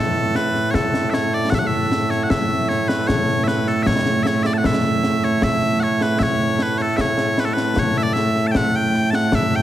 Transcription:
Already playing: bagpipes A2 A3 A4
0.15 snare
0.35 bagpipes B4, snare
0.55 snare
0.71 bagpipes A4 C#5, concert bass drum, snare
0.94 snare
1.10 bagpipes C#5 E5, snare
1.34 bagpipes D5
1.50 bagpipes F#5, concert bass drum, snare
1.54 bagpipes E5
1.59 bagpipes F#5
1.67 bagpipes E5
1.92 snare
2.10 bagpipes C#5, snare
2.23 bagpipes F#5
2.30 bagpipes E5, concert bass drum, snare
2.69 bagpipes C#5, snare
2.88 bagpipes B4, snare
3.07 bagpipes C#5, concert bass drum, snare
3.28 snare
3.44 bagpipes E5, snare
3.48 bagpipes B4
3.67 bagpipes A4, snare
3.83 bagpipes C#5 E5, concert bass drum, snare
4.06 snare
4.23 bagpipes E5, snare
4.27 bagpipes C#5
4.43 bagpipes D5 E5, snare
4.54 bagpipes A5
4.58 bagpipes F#5
4.64 bagpipes E5, concert bass drum, snare
5.03 snare
5.23 bagpipes C#5, snare
5.42 bagpipes E5, concert bass drum, snare
5.80 bagpipes C#5 F#5, snare
6.01 bagpipes B4, snare
6.19 bagpipes C#5 E5, concert bass drum, snare
6.40 snare
6.59 bagpipes B4, snare
6.78 bagpipes C#5, snare
6.82 bagpipes A4
6.97 bagpipes E5, concert bass drum, snare
7.01 bagpipes C#5
7.17 snare
7.38 bagpipes B4, snare
7.45 bagpipes A4
7.54 bagpipes B4, snare
7.76 bagpipes C#5, concert bass drum, snare
7.98 bagpipes E5
8.03 bagpipes D5
8.13 bagpipes E5, snare
8.36 snare
8.47 bagpipes A5
8.51 bagpipes G5, concert bass drum, snare
8.56 bagpipes F#5
8.76 bagpipes G5
8.94 snare
9.11 bagpipes A5, snare
9.15 bagpipes F#5
9.32 bagpipes E5, concert bass drum, snare
9.52 bagpipes G5, snare

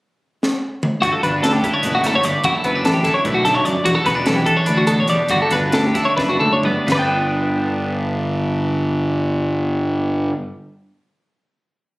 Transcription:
0.43 snare
0.83 mid tom
1.02 fingered electric bass G1, clean electric guitar G2 F#4, kick, closed hi-hat
1.12 clean electric guitar A4
1.23 fingered electric bass G1, clean electric guitar D4 B4, kick, closed hi-hat
1.43 fingered electric bass D2, clean electric guitar D3 A4, snare, closed hi-hat
1.53 clean electric guitar G4
1.64 clean electric guitar E4 A4, kick, closed hi-hat
1.74 clean electric guitar C#5
1.82 fingered electric bass F#1, clean electric guitar B2 B4, closed hi-hat
1.95 clean electric guitar F#4
2.04 clean electric guitar A2 A4, snare, closed hi-hat
2.15 clean electric guitar C#5
2.23 fingered electric bass G1, clean electric guitar G2 D5, closed hi-hat
2.44 fingered electric bass F#1, clean electric guitar F#2 E4 F#4, kick, closed hi-hat
2.55 clean electric guitar A4
2.64 fingered electric bass F#1, clean electric guitar B3 B4, kick, closed hi-hat
2.75 clean electric guitar D4
2.85 fingered electric bass A1, clean electric guitar D3 A4, snare, closed hi-hat
2.94 clean electric guitar G4
3.04 clean electric guitar E4 A4, kick, snare, closed hi-hat
3.14 clean electric guitar C#5
3.25 fingered electric bass B1, clean electric guitar A2 B4, kick, closed hi-hat
3.34 clean electric guitar F#4
3.45 clean electric guitar G2 A4, kick, snare, closed hi-hat
3.55 clean electric guitar C#5
3.64 clean electric guitar F#2 D5, fingered electric bass F#2, closed hi-hat
3.84 fingered electric bass E1, clean electric guitar E2 F#4, kick, closed hi-hat
3.95 clean electric guitar A4
4.05 fingered electric bass E1, clean electric guitar B3 B4, kick, snare, closed hi-hat
4.15 clean electric guitar D4
4.26 fingered electric bass B1, clean electric guitar E3 A4, snare, closed hi-hat
4.36 clean electric guitar G4
4.46 clean electric guitar A4, kick, closed hi-hat
4.57 clean electric guitar C#5
4.66 fingered electric bass D2, clean electric guitar D4 B4, closed hi-hat
4.77 clean electric guitar F#4
4.87 clean electric guitar B2 A4, closed hi-hat
5.00 clean electric guitar C#5
5.08 fingered electric bass E2, clean electric guitar G3 D5, closed hi-hat
5.28 fingered electric bass G1, clean electric guitar G2 F#4, kick, closed hi-hat
5.42 clean electric guitar A4
5.51 fingered electric bass G1, clean electric guitar D4 B4, kick, snare, closed hi-hat
5.72 fingered electric bass D2, clean electric guitar D3 A4, snare, closed hi-hat
5.86 clean electric guitar G4
5.94 clean electric guitar E4 A4, kick, snare, closed hi-hat
6.05 clean electric guitar C#5
6.17 fingered electric bass F#1, clean electric guitar D4 B4, kick, snare
6.29 clean electric guitar F#4
6.40 clean electric guitar D2 A4, mid tom
6.53 clean electric guitar C#5
6.63 fingered electric bass G2, clean electric guitar B3 D5, floor tom
6.86 fingered electric bass G1, clean electric guitar G2, snare, floor tom, china
6.92 clean electric guitar D3 B4 D5
6.97 clean electric guitar B3 G5
7.02 clean electric guitar D4

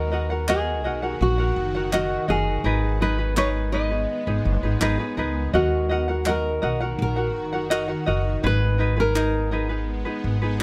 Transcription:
Already playing: upright bass D#2, ambient pad D#3 F#4, ukulele F#4 A#4 D#5 F#5, nylon-string guitar A#4
0.12 ukulele F#4 A#4 D#5 F#5
0.30 ukulele F#4 A#4 F#5
0.48 ukulele F#4 A#4 D#5 F#5, nylon-string guitar G#4, clap
0.84 upright bass B1, ukulele F#4 A#4 D#5 F#5
1.02 ukulele F#4 A#4 F#5
1.21 upright bass A#1, nylon-string guitar F#4
1.38 ukulele F#4 A#4 F#5
1.56 upright bass F#1
1.75 ukulele F#4 A#4 F#5
1.93 ukulele F#4 A#4 D#5 F#5, nylon-string guitar F#4, clap
2.28 upright bass F#1, ukulele F#4 A#4 D#5 F#5, nylon-string guitar G#4
2.64 upright bass G#1, ambient pad G#3 B3, ukulele D#4 G#4 A#4 B4
3.01 ukulele D#4 G#4 A#4 B4, nylon-string guitar B4
3.18 ukulele D#4 G#4 B4
3.37 ukulele D#4 G#4 A#4 B4, nylon-string guitar C#5, clap
3.72 ukulele D#4 G#4 A#4 B4, nylon-string guitar D#5
3.90 ukulele D#4 G#4 B4
4.27 upright bass G#1, ukulele D#4 G#4 B4
4.45 upright bass F#1
4.63 upright bass G#1, ukulele D#4 G#4 B4
4.81 upright bass G#1, ukulele D#4 G#4 A#4 B4, clap
4.99 ukulele D#4 G#4 B4
5.17 upright bass C#2, ukulele D#4 G#4 A#4 B4
5.53 upright bass D#2, ambient pad D#3 F#4, ukulele F#4 A#4 D#5 F#5, nylon-string guitar F#4
5.89 ukulele F#4 A#4 D#5 F#5
6.08 ukulele F#4 A#4 F#5
6.26 ukulele F#4 A#4 D#5 F#5, nylon-string guitar A#4, clap
6.62 upright bass B1, ukulele F#4 A#4 D#5 F#5
6.80 ukulele F#4 A#4 F#5
6.99 upright bass A#1, nylon-string guitar A#4
7.16 ukulele F#4 A#4 F#5
7.35 upright bass F#1
7.53 ukulele F#4 A#4 F#5
7.70 ukulele F#4 A#4 D#5 F#5, clap
7.88 ukulele F#4 A#4 F#5
8.06 upright bass F#1, ukulele F#4 A#4 D#5 F#5
8.43 upright bass G#1, ambient pad G#3 B3, ukulele D#4 G#4 B4, nylon-string guitar B4
8.78 ukulele D#4 G#4 A#4 B4
8.96 ukulele D#4 G#4 B4, nylon-string guitar A#4
9.15 ukulele D#4 G#4 A#4, clap
9.51 ukulele D#4 G#4 A#4 B4
9.69 ukulele D#4 G#4 B4
10.05 ukulele D#4 G#4 B4
10.24 upright bass G#1
10.42 ukulele D#4 G#4 B4

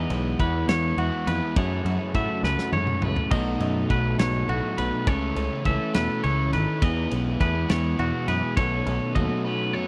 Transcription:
Already playing: clean electric guitar E2 E3 B3 D#4 G#4 D#5, overdriven electric guitar E3 G#3 B3
0.10 picked electric bass B1, overdriven electric guitar G#3 B3 E4, ride
0.40 picked electric bass E2, overdriven electric guitar E3 G#3 B3 E4, clean electric guitar E3 B3 B4, kick, ride
0.68 picked electric bass E2, overdriven electric guitar G#3 B3 E4, clean electric guitar C#5, snare, ride
0.97 picked electric bass E2, overdriven electric guitar E3 G#3 B3 E4, clean electric guitar F#4, ride
1.27 clean electric guitar E2 B4, picked electric bass F2, overdriven electric guitar G#3 B3 E4, ride
1.56 picked electric bass F#2, overdriven electric guitar F#2 C#3 F#3 A3 C#4, clean electric guitar F#2 A3 E4 G#4 C#5, kick, ride
1.85 picked electric bass F#2, overdriven electric guitar F#3 A3 C#4, clean electric guitar E4, ride
2.14 picked electric bass A2, overdriven electric guitar C#3 F#3 A3 C#4, clean electric guitar F#3 A3 E5, kick, ride
2.43 picked electric bass C#2, clean electric guitar F#2 B4, overdriven electric guitar F#3 A3 C#4, snare
2.59 snare
2.72 picked electric bass F#2, clean electric guitar G#2 C#5, overdriven electric guitar C#3 F#3 A3 C#4, high tom
2.87 mid tom
3.02 picked electric bass C#2, clean electric guitar A2 B4, overdriven electric guitar F#3 A3 C#4, mid tom
3.16 floor tom
3.31 picked electric bass B1, overdriven electric guitar B2 F#3 A3 D#4, clean electric guitar B2 A3 D#4 F#4 D#5, kick, crash
3.60 picked electric bass F#2, overdriven electric guitar F#3 A3 D#4, clean electric guitar D#4, ride
3.89 picked electric bass B1, overdriven electric guitar B2 F#3 A3 D#4, clean electric guitar F#3 A3 B4, kick, ride
4.18 picked electric bass B1, clean electric guitar G#2 C#5, overdriven electric guitar F#3 A3 D#4, snare, ride
4.47 picked electric bass B1, clean electric guitar A2 F#4, overdriven electric guitar B2 F#3 A3 D#4, ride
4.77 picked electric bass B1, clean electric guitar B2 B4, overdriven electric guitar F#3 A3 D#4, ride
5.07 picked electric bass C#2, overdriven electric guitar C#3 E3 A3 C#4 A4, clean electric guitar C#3 A3 C#4 C#5, kick, ride
5.36 picked electric bass C#2, overdriven electric guitar A3 C#4 A4, clean electric guitar C#4, ride
5.64 picked electric bass C#2, overdriven electric guitar E3 A3 C#4 A4, clean electric guitar E3 A3 E5, kick, ride
5.94 picked electric bass E2, clean electric guitar B2 B4, overdriven electric guitar A3 C#4 A4, snare, ride
6.22 picked electric bass C#2, clean electric guitar C#3 C#5, overdriven electric guitar E3 A3 C#4 A4, ride
6.53 picked electric bass G#1, clean electric guitar D#3 B4, overdriven electric guitar A3 C#4 A4, ride
6.81 clean electric guitar E2 B3 D#4 G#4 D#5, picked electric bass E2, overdriven electric guitar E3 G#3 B3 E4 G#4, kick, ride
7.10 picked electric bass B1, overdriven electric guitar B3 E4 G#4, clean electric guitar C#4, ride
7.40 picked electric bass E2, clean electric guitar E3 A3 B4, overdriven electric guitar G#3 B3 E4 G#4, kick, ride
7.55 clean electric guitar B3
7.68 picked electric bass E2, overdriven electric guitar B3 E4 G#4, clean electric guitar C#5, snare, ride
7.98 picked electric bass E2, clean electric guitar B2 F#4, overdriven electric guitar G#3 B3 E4 G#4, ride
8.28 picked electric bass F#2, overdriven electric guitar B3 E4 G#4, clean electric guitar G#4 B4, ride
8.56 picked electric bass B1, overdriven electric guitar B2 D#3 F#3 B3 D#4 A4, clean electric guitar B2 A3 C#4 C#5, kick, ride
8.86 picked electric bass B1, overdriven electric guitar F#3 B3 D#4 A4, clean electric guitar C#4, ride
9.15 picked electric bass D#2, overdriven electric guitar F#3 B3 D#4 A4, clean electric guitar F#3 A3 D#5, kick, ride
9.44 overdriven electric guitar F#3 B3 D#4 A4, clean electric guitar C#4 B4
9.73 clean electric guitar F#2 C#5, overdriven electric guitar F#3 B3 D#4 A4

